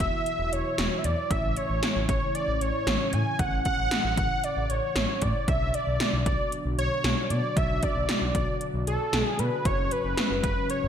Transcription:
Already playing: B2 E3 F#3 E4 F#4 E5, downlifter
0.00 E1, kick, closed hi-hat
0.26 closed hi-hat
0.39 E1
0.52 E1 C#5, closed hi-hat
0.78 E1, snare, closed hi-hat
0.98 E5
1.04 E2 D5, closed hi-hat
1.31 A1 A2 C#3 C#4 E5, kick, closed hi-hat
1.44 A1
1.57 C#5, closed hi-hat
1.70 A1
1.83 snare, closed hi-hat
1.96 A1
2.09 A1 C#5, kick, closed hi-hat
2.35 D5, closed hi-hat
2.48 A1
2.61 A1 C#5, closed hi-hat
2.87 A1, snare, closed hi-hat
3.13 A2 G#5, closed hi-hat
3.39 A1 F#5, kick, closed hi-hat
3.52 A1
3.65 F#5, kick, closed hi-hat
3.78 A1
3.91 snare, closed hi-hat
4.04 A1
4.17 A1, kick, closed hi-hat
4.44 D5, closed hi-hat
4.57 A1
4.70 A1 C#5, closed hi-hat
4.96 A1, snare, closed hi-hat
5.22 A2 D5, kick, closed hi-hat
5.48 B1 B2 D3 F#3 D4 F#4 E5, kick, closed hi-hat
5.61 B1
5.74 D5, closed hi-hat
5.87 B1
6.00 snare, closed hi-hat
6.13 B1
6.26 B1 D5, kick, closed hi-hat
6.52 closed hi-hat
6.65 B1
6.78 B1 C#5, closed hi-hat
7.04 B1, snare, closed hi-hat
7.30 B2 D5, closed hi-hat
7.57 B1 E5, kick, closed hi-hat
7.70 B1
7.83 D5, kick, closed hi-hat
7.96 B1
8.09 snare, closed hi-hat
8.22 B1
8.35 B1 D5, kick, closed hi-hat
8.61 closed hi-hat
8.74 B1
8.87 B1 A4, closed hi-hat
9.13 B1, snare, closed hi-hat
9.23 G#4
9.39 B2 B4, closed hi-hat
9.65 F#1 G#2 C#3 F#3 C#4 C#5, kick, closed hi-hat
9.78 F#1
9.91 B4, closed hi-hat
10.04 F#1
10.17 snare, closed hi-hat
10.30 F#1
10.44 F#1 B4, kick, closed hi-hat
10.70 C#5, closed hi-hat
10.83 F#1

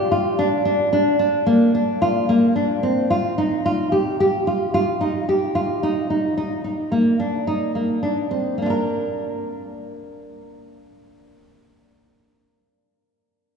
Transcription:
0.12 F4
0.39 D4
0.65 D4
0.93 D4
1.19 D4
1.47 A#3
1.75 D4
2.02 F4
2.29 A#3
2.56 D4
2.83 C4
3.10 F4
3.38 D#4
3.66 F4
3.92 G4
4.20 G4
4.47 F4
4.74 F4
5.01 D#4
5.29 G4
5.55 F4
5.83 D#4
6.10 D#4
6.37 D#4
6.64 D#4
6.92 A#3
7.20 D4
7.47 D#4
7.75 A#3
8.03 D4
8.31 C4
8.58 A#3
8.62 D4 F4
8.70 A#4

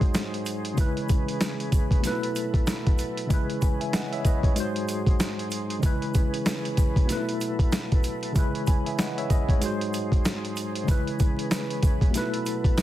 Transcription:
Already playing: G#2 F#3 G#3 D#4 F#4 G#4 C5
0.01 kick, closed hi-hat
0.14 snare, closed hi-hat, shaker
0.34 closed hi-hat
0.46 closed hi-hat, shaker
0.65 closed hi-hat
0.73 C#3 G#3
0.78 E3 C#4 E4 B4, kick, closed hi-hat, shaker
0.97 closed hi-hat
1.09 kick, closed hi-hat, shaker
1.28 closed hi-hat
1.41 snare, closed hi-hat, shaker
1.60 closed hi-hat
1.72 kick, closed hi-hat, shaker
1.91 kick, closed hi-hat
2.00 B2 A3, closed hi-hat
2.04 F#3 D#4 E4 A4 B4, snare, shaker
2.11 E4
2.23 closed hi-hat
2.35 closed hi-hat, shaker
2.54 kick, closed hi-hat
2.67 snare, closed hi-hat, shaker
2.87 kick, closed hi-hat
2.98 closed hi-hat, shaker
3.17 closed hi-hat
3.26 C#3 G#3, kick
3.30 E3 C#4 E4 G#4 B4, closed hi-hat, shaker
3.50 closed hi-hat
3.61 G#5 B5, kick, closed hi-hat, shaker
3.80 E5 G#5, closed hi-hat
3.93 D#5 F#5, snare, closed hi-hat, shaker
4.12 C#5 E5, closed hi-hat
4.25 B4 D#5, kick, closed hi-hat, shaker
4.43 C#5, kick, closed hi-hat
4.53 G#2 F#3 G#3 D#4 C5, closed hi-hat
4.57 F#4 C5, shaker
4.76 closed hi-hat
4.88 closed hi-hat, shaker
5.06 kick, closed hi-hat
5.20 snare, closed hi-hat, shaker
5.39 closed hi-hat
5.51 closed hi-hat, shaker
5.70 closed hi-hat
5.79 C#3 E3 G#3 C#4 G#4 B4
5.83 E4 B4, kick, closed hi-hat, shaker
6.02 closed hi-hat
6.14 kick, closed hi-hat, shaker
6.34 closed hi-hat
6.46 snare, closed hi-hat, shaker
6.65 closed hi-hat
6.77 kick, closed hi-hat, shaker
6.96 kick, closed hi-hat
7.05 B2 A3, closed hi-hat
7.09 F#3 D#4 E4 A4 B4, snare, shaker
7.17 E4
7.29 closed hi-hat
7.41 closed hi-hat, shaker
7.59 kick, closed hi-hat
7.72 snare, closed hi-hat, shaker
7.92 kick, closed hi-hat
8.03 closed hi-hat, shaker
8.23 closed hi-hat
8.32 C#3 G#3 C#4, kick, shaker
8.36 E3 E4 G#4 B4, closed hi-hat
8.55 closed hi-hat
8.67 G#5 B5, kick, closed hi-hat, shaker
8.86 E5 G#5, closed hi-hat
8.99 D#5 F#5, snare, closed hi-hat, shaker
9.18 C#5 E5, closed hi-hat
9.30 B4 D#5, kick, closed hi-hat, shaker
9.49 C#5, kick, closed hi-hat
9.58 G#2 G#3, closed hi-hat, shaker
9.63 F#3 D#4 F#4 G#4 C5
9.81 closed hi-hat
9.93 closed hi-hat, shaker
10.12 kick, closed hi-hat
10.25 snare, closed hi-hat, shaker
10.45 closed hi-hat
10.56 closed hi-hat, shaker
10.75 closed hi-hat
10.84 C#3 G#3
10.88 E3 C#4 E4 B4, kick, closed hi-hat, shaker
11.07 closed hi-hat
11.19 kick, closed hi-hat, shaker
11.39 closed hi-hat
11.51 snare, closed hi-hat, shaker
11.70 closed hi-hat
11.83 kick, closed hi-hat, shaker
12.01 kick, closed hi-hat
12.10 B2 A3, closed hi-hat
12.15 F#3 D#4 E4 A4 B4, snare, shaker
12.22 E4
12.34 closed hi-hat
12.46 closed hi-hat, shaker
12.64 kick, closed hi-hat
12.78 snare, closed hi-hat, shaker

